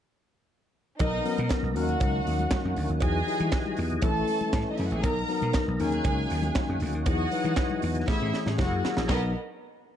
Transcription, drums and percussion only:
0.99 kick, closed hi-hat, cowbell, muted conga, low conga
1.25 open hi-hat, muted conga
1.38 closed hi-hat, high conga
1.49 kick, snare, clap, closed hi-hat, cowbell
1.63 high conga
1.76 open hi-hat
1.89 closed hi-hat, low conga
2.00 kick, closed hi-hat, cowbell, muted conga
2.27 open hi-hat, muted conga
2.39 closed hi-hat, high conga
2.51 kick, snare, clap, closed hi-hat, cowbell, muted conga, high conga
2.76 open hi-hat, muted conga, low conga
2.89 closed hi-hat
3.00 kick, closed hi-hat, cowbell, muted conga, low conga
3.28 open hi-hat
3.40 closed hi-hat, high conga
3.52 kick, snare, clap, closed hi-hat, cowbell, muted conga
3.66 high conga
3.77 open hi-hat, muted conga
3.90 closed hi-hat, low conga
4.02 kick, closed hi-hat, cowbell, muted conga
4.28 open hi-hat, muted conga
4.41 closed hi-hat, high conga
4.53 kick, snare, clap, closed hi-hat, cowbell, muted conga, high conga
4.78 open hi-hat, low conga
4.91 closed hi-hat
5.03 kick, closed hi-hat, cowbell, low conga
5.28 open hi-hat, muted conga
5.41 closed hi-hat, high conga
5.53 kick, snare, clap, closed hi-hat, cowbell, muted conga
5.66 high conga
5.80 open hi-hat
5.92 closed hi-hat, low conga
6.04 kick, closed hi-hat, cowbell, muted conga
6.30 open hi-hat, muted conga
6.43 closed hi-hat, high conga
6.55 kick, snare, clap, closed hi-hat, cowbell, high conga
6.80 open hi-hat, muted conga, low conga
6.93 closed hi-hat
7.06 kick, closed hi-hat, cowbell, low conga
7.32 open hi-hat, muted conga
7.44 closed hi-hat, high conga
7.56 kick, snare, clap, closed hi-hat, cowbell
7.70 high conga
7.82 open hi-hat, muted conga
7.95 closed hi-hat, low conga
8.08 kick, snare, cowbell
8.34 snare
8.46 snare, high conga
8.58 kick, snare, cowbell, muted conga, high conga
8.85 snare, muted conga, low conga
8.97 snare
9.09 kick, snare, cowbell, crash, high conga

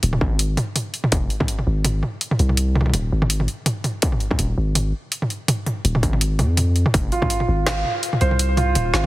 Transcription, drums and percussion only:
0.03 closed hi-hat
0.13 mid tom
0.21 kick
0.39 closed hi-hat
0.57 closed hi-hat, mid tom
0.76 closed hi-hat, mid tom
0.94 closed hi-hat
1.04 mid tom
1.12 kick, closed hi-hat, mid tom
1.30 closed hi-hat
1.40 kick, mid tom
1.48 closed hi-hat
1.59 mid tom
1.85 closed hi-hat, mid tom
2.03 mid tom
2.21 closed hi-hat
2.31 mid tom
2.39 closed hi-hat
2.49 mid tom
2.57 closed hi-hat
2.75 mid tom
2.81 mid tom
2.86 mid tom
2.90 closed hi-hat, mid tom
2.94 mid tom
3.22 mid tom
3.30 closed hi-hat
3.40 mid tom
3.48 closed hi-hat
3.66 closed hi-hat, mid tom
3.84 closed hi-hat, mid tom
4.02 kick, closed hi-hat
4.12 mid tom
4.20 closed hi-hat
4.31 kick, mid tom
4.39 closed hi-hat
4.75 closed hi-hat, mid tom
5.12 closed hi-hat
5.22 mid tom
5.30 closed hi-hat
5.48 closed hi-hat, mid tom
5.66 closed hi-hat, mid tom
5.85 closed hi-hat
5.95 mid tom
6.03 kick, closed hi-hat
6.13 mid tom
6.21 closed hi-hat
6.39 closed hi-hat, mid tom
6.57 closed hi-hat, mid tom
6.76 closed hi-hat
6.86 mid tom
6.94 kick, closed hi-hat, mid tom
7.12 closed hi-hat
7.22 kick, mid tom
7.30 closed hi-hat
7.40 mid tom
7.67 snare, closed hi-hat, mid tom
7.85 mid tom
8.03 closed hi-hat
8.13 mid tom
8.21 closed hi-hat
8.31 mid tom
8.39 closed hi-hat
8.57 closed hi-hat, mid tom
8.75 closed hi-hat, mid tom
8.94 snare

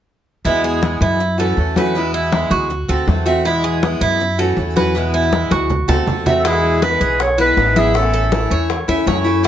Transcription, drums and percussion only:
0.45 high conga
0.64 high conga
0.83 high conga
1.02 high conga
1.20 high conga
1.39 high conga
1.57 high conga
1.76 high conga
1.95 high conga
2.14 high conga
2.32 high conga
2.51 high conga
2.70 high conga
2.89 high conga
3.08 high conga
3.27 high conga
3.45 high conga
3.64 high conga
3.83 high conga
4.02 high conga
4.20 high conga
4.39 high conga
4.58 high conga
4.77 high conga
4.95 high conga
5.14 high conga
5.33 high conga
5.51 high conga
5.70 low conga
5.89 low conga
6.08 low conga
6.26 low conga
6.45 high bongo, high conga
6.63 high bongo, high conga
6.82 high bongo, high conga
7.01 high conga
7.20 high bongo, high conga
7.39 high bongo, high conga
7.57 high bongo, low bongo, high conga
7.76 high bongo, high conga
7.95 high bongo, high conga
8.13 high bongo, high conga
8.32 high bongo, high conga
8.51 high conga
8.70 high bongo, high conga
8.89 high bongo, high conga
9.07 high bongo, low bongo, high conga
9.26 high bongo, high conga

